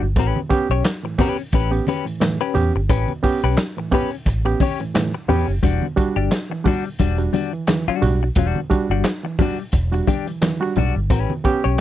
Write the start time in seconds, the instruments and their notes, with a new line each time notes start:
0.00 fingered electric bass G1, reed electric piano D4 F#4, muted clean electric guitar stroke
0.16 fingered electric bass A1, reed electric piano A2 E3, clean electric guitar C#4 G4 B4, kick, closed hi-hat, muted conga
0.36 high conga
0.49 reed electric piano B3 C#4 G4, muted clean electric guitar stroke, kick, closed hi-hat, muted conga
0.69 fingered electric bass B1, reed electric piano C#4 G4, clean electric guitar C#4 G4 C#5
0.84 reed electric piano C#4 G4, muted clean electric guitar stroke, snare, clap, closed hi-hat, muted conga
1.03 reed electric piano A2 E3, muted clean electric guitar stroke
1.18 reed electric piano B3 C#4 G4, clean electric guitar C#4 G4 B4, kick, open hi-hat, high conga, low conga
1.39 muted clean electric guitar stroke
1.52 fingered electric bass A1, clean electric guitar C#4 G4 B4, kick, closed hi-hat
1.71 reed electric piano B3 C#4 G4, muted clean electric guitar stroke, closed hi-hat
1.87 clean electric guitar C#4 G4 B4, closed hi-hat, muted conga, high conga
2.05 reed electric piano A2 E3, muted clean electric guitar stroke, closed hi-hat
2.20 reed electric piano A2 E3, muted clean electric guitar stroke, snare, clap, closed hi-hat, muted conga, high conga
2.41 clean electric guitar C#4 G4 B4
2.54 fingered electric bass E2, reed electric piano B3 C#4 G4, muted clean electric guitar stroke, closed hi-hat, muted conga, low conga
2.74 fingered electric bass G1, reed electric piano C#4 G4, muted clean electric guitar stroke
2.89 fingered electric bass A1, reed electric piano A2 E3, clean electric guitar C#4 G4 B4, kick, closed hi-hat, muted conga
3.08 high conga
3.23 reed electric piano B3 C#4 G4, muted clean electric guitar stroke, kick, open hi-hat
3.42 fingered electric bass B1, reed electric piano C#4 G4, clean electric guitar C#4 G4 B4
3.57 reed electric piano C#4 G4, muted clean electric guitar stroke, snare, clap, closed hi-hat
3.77 reed electric piano A2 E3, muted clean electric guitar stroke
3.91 reed electric piano B3 C#4 G4, clean electric guitar C#4 G4 B4, kick, open hi-hat, high conga, low conga
4.12 muted clean electric guitar stroke
4.25 fingered electric bass A1, muted clean electric guitar stroke, kick, closed hi-hat, muted conga
4.45 reed electric piano B3 C#4 G4, muted clean electric guitar stroke, closed hi-hat
4.60 clean electric guitar C#4 G4 C#5, kick, open hi-hat, muted conga, high conga
4.79 reed electric piano A2 E3, muted clean electric guitar stroke, closed hi-hat
4.94 reed electric piano A2 E3, snare, clap, closed hi-hat, muted conga, high conga
5.14 muted clean electric guitar stroke
5.28 fingered electric bass E2, reed electric piano B3 C#4 G4, clean electric guitar C#4 G4 B4, open hi-hat, low conga
5.48 fingered electric bass F#1, reed electric piano C#4 G4, muted clean electric guitar stroke
5.63 fingered electric bass E1, reed electric piano E3, clean electric guitar G3 D4 F#4, kick, closed hi-hat
5.82 high conga
5.96 reed electric piano G3 D4 F#4, muted clean electric guitar stroke, kick, closed hi-hat
6.16 fingered electric bass G1, clean electric guitar G3 D4 G4, reed electric piano D4 F#4
6.31 reed electric piano D4 F#4, muted clean electric guitar stroke, snare, clap, closed hi-hat, muted conga
6.49 reed electric piano E3, muted clean electric guitar stroke
6.64 reed electric piano G3 D4 F#4, clean electric guitar G3 D4 F#4, kick, open hi-hat, muted conga, high conga, low conga
6.86 muted clean electric guitar stroke
6.99 fingered electric bass E1, clean electric guitar G3 D4 F#4, kick, closed hi-hat
7.18 reed electric piano G3 D4 F#4, closed hi-hat
7.33 clean electric guitar G3 D4 F#4, closed hi-hat, muted conga, high conga
7.53 reed electric piano E3, muted clean electric guitar stroke
7.67 reed electric piano E3, muted clean electric guitar stroke, snare, clap, closed hi-hat, muted conga, high conga
7.88 clean electric guitar G3 D4 F#4, muted fingered electric bass stroke
8.02 fingered electric bass B1, reed electric piano G3 D4 F#4, muted clean electric guitar stroke, closed hi-hat, muted conga, low conga
8.21 reed electric piano D4 F#4, muted clean electric guitar stroke
8.35 fingered electric bass E1, reed electric piano E3, clean electric guitar G3 D4 F#4, kick, closed hi-hat, muted conga
8.55 high conga
8.70 reed electric piano G3 D4 F#4, muted clean electric guitar stroke, kick, closed hi-hat, muted conga
8.90 fingered electric bass G1, clean electric guitar G3 D4 F#4, reed electric piano D4 F#4
9.04 reed electric piano D4 F#4, muted clean electric guitar stroke, snare, clap, closed hi-hat
9.24 reed electric piano E3, muted clean electric guitar stroke
9.39 reed electric piano G3 D4 F#4, clean electric guitar G3 D4 F#4, kick, open hi-hat, muted conga, high conga, low conga
9.60 muted clean electric guitar stroke
9.72 fingered electric bass E1, muted clean electric guitar stroke, kick, closed hi-hat
9.92 reed electric piano G3 D4 F#4, muted clean electric guitar stroke, closed hi-hat
10.07 clean electric guitar G3 D4 G4, kick, closed hi-hat, muted conga, high conga
10.26 reed electric piano E3, muted clean electric guitar stroke, closed hi-hat
10.41 reed electric piano E3, snare, clap, closed hi-hat, muted conga, high conga
10.60 reed electric piano G3 D4 F#4, muted clean electric guitar stroke
10.76 fingered electric bass B1, clean electric guitar G3 D4 F#4, reed electric piano D4 F#4, closed hi-hat, low conga
10.96 fingered electric bass G1, muted clean electric guitar stroke
11.10 fingered electric bass A1, reed electric piano A2 E3, clean electric guitar C#4 G4 B4, kick, closed hi-hat, muted conga
11.30 high conga
11.44 reed electric piano B3 C#4 G4, muted clean electric guitar stroke, kick, closed hi-hat
11.63 fingered electric bass B1, reed electric piano C#4 G4, clean electric guitar C#4 G4 C#5